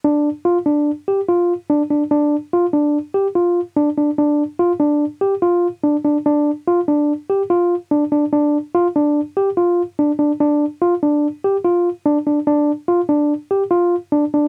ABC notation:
X:1
M:5/4
L:1/8
Q:1/4=145
K:Dm
V:1 name="Tine electric piano"
D2 F D2 G F2 D D | D2 F D2 G F2 D D | D2 F D2 G F2 D D | D2 F D2 G F2 D D |
D2 F D2 G F2 D D | D2 F D2 G F2 D D | D2 F D2 G F2 D D |]